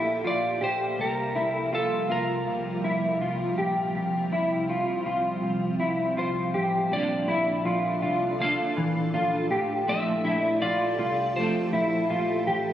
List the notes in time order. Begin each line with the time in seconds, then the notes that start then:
Already playing: A#1 A#3 E4 G4 A4 E5
0.24 A#1 F4 D5
0.61 A#1 G4 C5
0.98 C2 C3 F3 G3 A#4
1.35 C2 E4
1.53 A4
1.73 F4 A4
2.10 C2 F4 A#4
2.47 C2
2.84 C2 E4
3.21 C2 F4
3.58 A#1 G4
3.95 C2 C4
4.32 C2 E4
4.69 F4
5.06 C2 F4
5.43 C2
5.80 C2 E4
6.17 C2 F4 C5
6.54 A1 G4
6.90 A#1 A#2 D3 A#3 D4 A4 D5
6.95 F4 A4
7.28 A#1 E4
7.65 A#1 F4
8.02 C2 F4
8.39 D3 A#3 D4 F5
8.43 A4
8.77 A#1 E3
9.13 A#1 F4
9.50 A1 G4
9.86 A#1 A#2 F3 A3 C4 E4 G4 A4 E5
10.24 A#1 C4 E4 A4
10.28 A3
10.45 D5
10.62 A#1 F4 D5
10.99 C2 F4
11.36 F3 A3 C4 E4 C5
11.41 A4
11.73 A#1 E4
12.10 A#1 F4
12.47 A1 G4